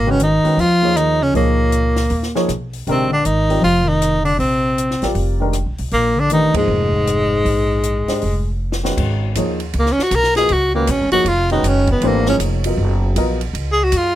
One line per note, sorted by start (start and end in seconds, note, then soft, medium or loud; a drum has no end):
0.00 0.40 G#1 medium
0.00 0.12 A#3 medium
0.06 0.20 C#3 medium
0.06 0.19 D#3 medium
0.06 0.19 G#3 soft
0.06 0.19 C#4 medium
0.06 0.19 F#4 medium
0.06 0.19 B4 medium
0.10 0.22 C#4 medium
0.20 0.60 D#3 medium
0.20 0.62 D#4 medium
0.20 closed hi-hat soft
0.44 0.57 D#3 medium
0.44 0.57 G#3 soft
0.44 0.57 C#4 medium
0.44 0.57 F#4 soft
0.44 0.57 B4 medium
0.44 muted upright bass stroke soft
0.44 open hi-hat soft
0.57 1.30 D#2 medium
0.57 0.98 F3 medium
0.57 0.99 F4 loud
0.57 open hi-hat soft
0.82 1.32 F3 medium
0.82 1.32 A#3 medium
0.82 1.32 D#4 medium
0.82 1.32 G#4 medium
0.82 1.33 C#5 medium
0.96 1.23 D#3 medium
0.96 1.24 D#4 medium
0.96 cross-stick medium
0.96 closed hi-hat soft
1.21 1.34 C#3 medium
1.21 1.35 C#4 medium
1.34 2.07 C#2 medium
1.34 2.45 A#2 medium
1.34 1.92 F3 medium
1.34 1.92 A#3 medium
1.34 2.46 A#3 medium
1.34 1.93 D#4 medium
1.34 1.93 G#4 medium
1.34 1.93 C#5 medium
1.34 open hi-hat soft
1.72 closed hi-hat soft
1.96 snare soft
1.96 open hi-hat soft
2.10 2.46 D#2 medium
2.10 open hi-hat soft
2.23 snare soft
2.35 2.48 F3 medium
2.35 2.48 A#3 medium
2.35 2.48 D#4 medium
2.35 2.48 G#4 medium
2.35 2.48 C#5 medium
2.35 snare soft
2.48 2.84 B1 medium
2.48 cross-stick medium
2.48 closed hi-hat soft
2.73 open hi-hat soft
2.87 3.23 A#1 medium
2.87 3.09 C3 medium
2.87 3.09 D#3 medium
2.87 3.10 G#3 medium
2.87 3.12 C4 medium
2.87 3.10 D4 medium
2.87 3.10 G4 medium
2.87 3.10 A#4 medium
2.87 open hi-hat soft
3.10 3.25 D3 medium
3.10 3.27 D4 medium
3.23 3.61 G#1 medium
3.23 3.59 D#3 medium
3.23 3.63 D#4 medium
3.23 closed hi-hat soft
3.49 3.62 G3 medium
3.49 3.62 C4 medium
3.49 3.62 F4 soft
3.49 3.62 A#4 soft
3.49 3.63 D5 medium
3.49 open hi-hat soft
3.60 4.36 F1 medium
3.60 3.85 F3 medium
3.60 3.90 F4 medium
3.60 open hi-hat soft
3.84 4.22 D#3 medium
3.88 4.24 D#4 medium
4.02 cross-stick medium
4.02 closed hi-hat soft
4.22 4.35 D3 medium
4.22 4.38 D4 medium
4.22 open hi-hat soft
4.36 4.98 A#1 medium
4.36 5.10 C3 medium
4.36 5.12 C4 medium
4.40 open hi-hat soft
4.78 closed hi-hat soft
4.91 snare soft
5.02 5.14 A1 medium
5.02 5.38 G3 medium
5.02 5.38 C4 medium
5.02 5.38 F4 medium
5.02 5.39 A#4 medium
5.02 5.39 D5 medium
5.02 snare soft
5.02 open hi-hat soft
5.15 5.63 F1 medium
5.15 open hi-hat soft
5.40 5.53 D#3 medium
5.40 5.53 G#3 medium
5.40 5.53 D4 medium
5.40 5.53 G4 medium
5.40 5.54 A#4 medium
5.53 cross-stick medium
5.53 closed hi-hat medium
5.66 5.78 A#1 medium
5.78 5.91 B1 medium
5.78 open hi-hat soft
5.91 6.51 A#1 medium
5.91 6.18 A#2 medium
5.91 6.21 A#3 medium
5.91 open hi-hat soft
6.16 6.30 D3 medium
6.16 6.32 D4 medium
6.30 6.54 D#3 medium
6.30 6.52 E3 medium
6.30 6.53 A3 medium
6.30 6.53 D4 medium
6.30 6.54 D#4 medium
6.30 6.53 G4 medium
6.30 6.53 B4 medium
6.30 closed hi-hat soft
6.54 8.56 G#2 medium
6.54 6.88 F3 medium
6.54 8.56 G#3 medium
6.54 6.88 A#3 soft
6.54 6.88 D#4 soft
6.54 6.88 G#4 soft
6.54 6.88 C5 medium
6.54 muted upright bass stroke soft
6.54 kick medium
6.54 ride medium
6.68 7.41 F1 medium
6.93 kick soft
7.07 cross-stick soft
7.07 closed hi-hat soft
7.45 8.03 A#1 medium
7.45 open hi-hat soft
7.83 closed hi-hat medium
8.08 8.20 G#3 soft
8.08 8.20 D4 soft
8.08 8.20 G4 medium
8.08 8.21 C5 medium
8.08 8.21 D#5 medium
8.08 muted upright bass stroke soft
8.08 snare soft
8.08 open hi-hat soft
8.22 8.94 F1 medium
8.22 open hi-hat soft
8.72 snare medium
8.83 9.33 D#3 medium
8.83 9.33 G#3 medium
8.83 9.33 C#4 medium
8.83 9.33 F#4 medium
8.83 9.34 B4 medium
8.83 snare medium
8.97 9.34 G#1 medium
8.97 kick medium
8.97 crash medium
9.35 9.73 D#2 medium
9.35 9.58 F3 medium
9.35 9.58 A#3 medium
9.35 9.58 D#4 medium
9.35 9.58 G#4 medium
9.35 9.59 C#5 medium
9.35 hi-hat pedal medium
9.35 ride medium
9.60 ride soft
9.73 9.96 C#2 medium
9.73 ride soft
9.79 9.93 A#3 medium
9.86 snare soft
9.92 10.04 C#4 medium
9.98 muted upright bass stroke soft
9.98 snare soft
10.03 10.17 F#4 medium
10.11 10.48 B1 medium
10.11 hi-hat pedal medium
10.11 ride medium
10.15 10.36 A#4 medium
10.23 snare soft
10.35 10.49 F#3 medium
10.35 10.49 B3 medium
10.35 10.49 F4 medium
10.35 10.54 G#4 medium
10.35 10.50 A#4 medium
10.35 10.50 D#5 medium
10.35 snare soft
10.35 ride soft
10.49 10.87 C#2 medium
10.49 10.74 F#4 medium
10.49 ride soft
10.74 10.87 D#3 medium
10.74 10.87 G#3 medium
10.74 10.92 A#3 medium
10.74 10.87 C#4 medium
10.74 10.87 F#4 medium
10.74 10.87 B4 medium
10.87 11.01 A#1 medium
10.87 11.12 C#4 medium
10.87 hi-hat pedal medium
10.87 ride medium
11.01 11.11 G#1 medium
11.12 11.24 F#1 medium
11.12 11.24 F3 medium
11.12 11.25 A#3 medium
11.12 11.25 D#4 medium
11.12 11.29 F#4 medium
11.12 11.25 G#4 medium
11.12 11.25 C#5 medium
11.12 ride soft
11.25 11.62 F1 medium
11.25 11.51 F4 medium
11.25 ride medium
11.50 12.00 D#3 medium
11.50 12.00 G#3 medium
11.50 12.00 C#4 medium
11.50 11.69 D#4 medium
11.50 12.00 F#4 medium
11.50 12.01 B4 medium
11.50 ride soft
11.63 12.00 F#1 medium
11.63 hi-hat pedal medium
11.63 ride medium
11.68 11.90 C#4 medium
11.87 kick medium
11.87 ride soft
11.92 12.09 B3 medium
12.01 12.38 G#1 medium
12.01 12.24 E3 medium
12.01 12.24 A3 medium
12.01 12.25 D4 medium
12.01 12.25 G4 medium
12.01 12.25 C5 medium
12.01 ride medium
12.08 12.28 A#3 medium
12.26 12.60 F3 medium
12.26 12.60 A#3 medium
12.26 12.36 C#4 medium
12.26 12.60 D#4 medium
12.26 12.60 G#4 medium
12.26 12.60 C#5 medium
12.26 snare soft
12.39 12.76 F1 medium
12.39 hi-hat pedal medium
12.39 ride medium
12.64 13.14 F#3 medium
12.64 13.14 B3 soft
12.64 13.14 F4 soft
12.64 13.15 A#4 medium
12.64 13.15 D#5 medium
12.64 ride medium
12.77 13.15 F#1 medium
13.16 13.53 A#1 medium
13.16 13.38 F#3 medium
13.16 13.38 B3 medium
13.16 13.38 F4 medium
13.16 13.39 A#4 medium
13.16 13.39 D#5 medium
13.16 hi-hat pedal soft
13.16 ride medium
13.41 ride soft
13.53 13.91 C#2 medium
13.53 ride medium
13.72 13.85 G#4 medium
13.84 13.98 F#4 medium
13.92 14.15 F#2 medium
13.92 hi-hat pedal medium
13.92 ride medium
13.97 14.15 F4 medium